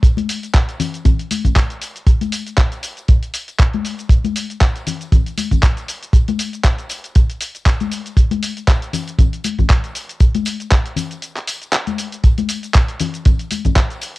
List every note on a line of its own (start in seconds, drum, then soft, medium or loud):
0.03 kick loud
0.03 closed hi-hat medium
0.03 tambourine soft
0.03 cabasa soft
0.17 closed hi-hat soft
0.17 tambourine soft
0.17 high conga medium
0.17 cabasa soft
0.29 open hi-hat loud
0.29 tambourine medium
0.29 cabasa medium
0.43 closed hi-hat soft
0.43 tambourine soft
0.43 cabasa soft
0.54 kick loud
0.54 clap loud
0.54 closed hi-hat medium
0.54 tambourine soft
0.54 cabasa soft
0.69 closed hi-hat soft
0.69 tambourine soft
0.69 cabasa soft
0.80 open hi-hat medium
0.80 tambourine medium
0.80 low conga medium
0.80 cabasa medium
0.94 closed hi-hat soft
0.94 tambourine soft
0.94 cabasa soft
1.05 kick loud
1.05 closed hi-hat medium
1.05 tambourine soft
1.05 low conga medium
1.05 cabasa soft
1.19 closed hi-hat soft
1.19 tambourine soft
1.19 cabasa soft
1.31 open hi-hat loud
1.31 tambourine medium
1.31 high conga medium
1.31 cabasa medium
1.45 kick medium
1.45 closed hi-hat soft
1.45 tambourine soft
1.45 low conga medium
1.45 cabasa soft
1.56 kick loud
1.56 clap loud
1.56 closed hi-hat medium
1.56 tambourine medium
1.56 cabasa soft
1.70 closed hi-hat soft
1.70 tambourine soft
1.70 cabasa soft
1.81 open hi-hat medium
1.81 tambourine medium
1.81 cabasa medium
1.96 closed hi-hat soft
1.96 tambourine soft
1.96 cabasa soft
2.07 kick loud
2.07 closed hi-hat medium
2.07 tambourine soft
2.07 cabasa soft
2.21 closed hi-hat soft
2.21 tambourine soft
2.21 high conga medium
2.21 cabasa soft
2.32 open hi-hat loud
2.32 tambourine medium
2.32 cabasa medium
2.46 closed hi-hat soft
2.46 tambourine soft
2.46 cabasa soft
2.57 kick loud
2.57 clap loud
2.57 closed hi-hat medium
2.57 tambourine soft
2.57 cabasa soft
2.72 closed hi-hat soft
2.72 tambourine soft
2.72 cabasa soft
2.83 open hi-hat medium
2.83 tambourine medium
2.83 cabasa medium
2.97 closed hi-hat soft
2.97 tambourine soft
2.97 cabasa soft
3.08 kick loud
3.08 closed hi-hat medium
3.08 tambourine soft
3.08 cabasa soft
3.23 closed hi-hat soft
3.23 tambourine soft
3.23 cabasa soft
3.34 open hi-hat loud
3.34 tambourine medium
3.34 cabasa medium
3.48 closed hi-hat soft
3.48 tambourine soft
3.48 cabasa soft
3.59 kick loud
3.59 clap loud
3.59 closed hi-hat medium
3.59 tambourine soft
3.59 cabasa soft
3.74 closed hi-hat soft
3.74 tambourine soft
3.74 high conga medium
3.74 cabasa soft
3.85 open hi-hat medium
3.85 tambourine medium
3.85 cabasa medium
3.98 closed hi-hat soft
3.98 tambourine soft
3.98 cabasa soft
4.10 kick loud
4.10 closed hi-hat medium
4.10 tambourine soft
4.10 cabasa soft
4.24 closed hi-hat soft
4.24 tambourine soft
4.24 high conga medium
4.24 cabasa soft
4.36 open hi-hat loud
4.36 tambourine medium
4.36 cabasa medium
4.50 closed hi-hat soft
4.50 tambourine soft
4.50 cabasa soft
4.61 kick loud
4.61 clap loud
4.61 closed hi-hat medium
4.61 tambourine soft
4.61 cabasa soft
4.75 closed hi-hat soft
4.75 tambourine soft
4.75 cabasa soft
4.87 open hi-hat medium
4.87 tambourine medium
4.87 low conga medium
4.87 cabasa medium
5.01 closed hi-hat soft
5.01 tambourine soft
5.01 cabasa soft
5.12 kick loud
5.12 closed hi-hat medium
5.12 tambourine soft
5.12 low conga medium
5.12 cabasa soft
5.26 closed hi-hat soft
5.26 tambourine soft
5.26 cabasa soft
5.38 open hi-hat loud
5.38 tambourine medium
5.38 high conga medium
5.38 cabasa medium
5.51 kick medium
5.51 closed hi-hat soft
5.51 tambourine soft
5.51 low conga medium
5.51 cabasa soft
5.63 kick loud
5.63 clap loud
5.63 closed hi-hat medium
5.63 tambourine medium
5.63 cabasa soft
5.77 closed hi-hat soft
5.77 tambourine soft
5.77 cabasa soft
5.88 open hi-hat medium
5.88 tambourine medium
5.88 cabasa medium
6.03 closed hi-hat soft
6.03 tambourine soft
6.03 cabasa soft
6.13 kick loud
6.13 closed hi-hat medium
6.13 tambourine soft
6.13 cabasa soft
6.28 closed hi-hat soft
6.28 tambourine soft
6.28 high conga medium
6.28 cabasa soft
6.39 open hi-hat medium
6.39 tambourine medium
6.39 cabasa medium
6.53 closed hi-hat soft
6.53 tambourine soft
6.53 cabasa soft
6.64 kick loud
6.64 clap loud
6.64 closed hi-hat medium
6.64 tambourine soft
6.64 cabasa soft
6.79 closed hi-hat soft
6.79 tambourine soft
6.79 cabasa soft
6.89 open hi-hat medium
6.89 tambourine medium
6.89 cabasa medium
7.04 closed hi-hat soft
7.04 tambourine soft
7.04 cabasa soft
7.15 kick loud
7.15 closed hi-hat medium
7.15 tambourine soft
7.15 cabasa soft
7.30 closed hi-hat soft
7.30 tambourine soft
7.30 cabasa soft
7.41 open hi-hat loud
7.41 tambourine medium
7.41 cabasa medium
7.55 closed hi-hat soft
7.55 tambourine soft
7.55 cabasa soft
7.66 kick loud
7.66 clap loud
7.66 closed hi-hat medium
7.66 tambourine medium
7.66 cabasa soft
7.80 closed hi-hat soft
7.80 tambourine soft
7.80 high conga medium
7.80 cabasa soft
7.92 open hi-hat medium
7.92 tambourine medium
7.92 cabasa medium
8.06 closed hi-hat soft
8.06 tambourine soft
8.06 cabasa soft
8.17 kick loud
8.17 closed hi-hat medium
8.17 tambourine soft
8.17 cabasa soft
8.31 closed hi-hat soft
8.31 tambourine soft
8.31 high conga medium
8.31 cabasa soft
8.43 open hi-hat loud
8.43 tambourine medium
8.43 cabasa medium
8.57 closed hi-hat soft
8.57 tambourine soft
8.57 cabasa soft
8.68 kick loud
8.68 clap loud
8.68 closed hi-hat medium
8.68 tambourine medium
8.68 cabasa soft
8.82 closed hi-hat soft
8.82 tambourine soft
8.82 cabasa soft
8.93 open hi-hat medium
8.93 tambourine medium
8.93 low conga medium
8.93 cabasa medium
9.07 closed hi-hat soft
9.07 tambourine soft
9.07 cabasa soft
9.19 kick loud
9.19 closed hi-hat medium
9.19 tambourine medium
9.19 low conga medium
9.19 cabasa soft
9.33 closed hi-hat soft
9.33 tambourine soft
9.33 cabasa soft
9.44 open hi-hat loud
9.44 tambourine medium
9.44 high conga medium
9.44 cabasa medium
9.58 kick medium
9.58 closed hi-hat soft
9.58 tambourine soft
9.58 low conga medium
9.58 cabasa soft
9.70 kick loud
9.70 clap loud
9.70 closed hi-hat medium
9.70 tambourine medium
9.70 cabasa soft
9.84 closed hi-hat soft
9.84 tambourine soft
9.84 cabasa soft
9.95 open hi-hat medium
9.95 tambourine medium
9.95 cabasa medium
10.09 closed hi-hat soft
10.09 tambourine soft
10.09 cabasa soft
10.20 kick loud
10.20 closed hi-hat medium
10.20 tambourine medium
10.20 cabasa soft
10.34 closed hi-hat soft
10.34 tambourine soft
10.34 high conga medium
10.34 cabasa soft
10.45 open hi-hat loud
10.45 tambourine loud
10.45 cabasa medium
10.60 closed hi-hat soft
10.60 tambourine soft
10.60 cabasa soft
10.71 kick loud
10.71 clap loud
10.71 closed hi-hat medium
10.71 tambourine medium
10.71 cabasa soft
10.85 closed hi-hat soft
10.85 tambourine soft
10.85 cabasa soft
10.96 open hi-hat medium
10.96 tambourine medium
10.96 low conga medium
10.96 cabasa medium
11.11 closed hi-hat soft
11.11 tambourine soft
11.11 cabasa soft
11.22 closed hi-hat medium
11.22 tambourine medium
11.22 cabasa soft
11.36 clap soft
11.36 closed hi-hat soft
11.36 tambourine soft
11.36 cabasa soft
11.47 open hi-hat loud
11.47 tambourine medium
11.47 cabasa medium
11.62 closed hi-hat soft
11.62 tambourine soft
11.62 cabasa soft
11.73 clap loud
11.73 closed hi-hat medium
11.73 tambourine soft
11.73 cabasa soft
11.87 closed hi-hat soft
11.87 tambourine soft
11.87 high conga medium
11.87 cabasa soft
11.98 open hi-hat medium
11.98 tambourine medium
11.98 cabasa medium
12.12 closed hi-hat soft
12.12 tambourine soft
12.12 cabasa soft
12.24 kick loud
12.24 closed hi-hat medium
12.24 tambourine medium
12.24 cabasa soft
12.38 closed hi-hat soft
12.38 tambourine soft
12.38 high conga medium
12.38 cabasa soft
12.49 open hi-hat loud
12.49 tambourine loud
12.49 cabasa medium
12.63 closed hi-hat soft
12.63 tambourine soft
12.63 cabasa soft
12.74 kick loud
12.74 clap loud
12.74 closed hi-hat medium
12.74 tambourine medium
12.74 cabasa soft
12.89 closed hi-hat soft
12.89 tambourine soft
12.89 cabasa soft
13.00 open hi-hat medium
13.00 tambourine medium
13.00 low conga medium
13.00 cabasa medium
13.14 closed hi-hat soft
13.14 tambourine soft
13.14 cabasa soft
13.25 kick loud
13.25 closed hi-hat medium
13.25 tambourine medium
13.25 low conga medium
13.25 cabasa soft
13.39 closed hi-hat soft
13.39 tambourine soft
13.39 cabasa soft
13.51 open hi-hat loud
13.51 tambourine medium
13.51 high conga medium
13.51 cabasa medium
13.65 kick medium
13.65 closed hi-hat soft
13.65 tambourine soft
13.65 low conga medium
13.65 cabasa soft
13.76 kick loud
13.76 clap loud
13.76 closed hi-hat medium
13.76 tambourine medium
13.76 cabasa soft
13.90 closed hi-hat soft
13.90 tambourine soft
13.90 cabasa soft
14.01 open hi-hat medium
14.01 tambourine medium
14.01 cabasa medium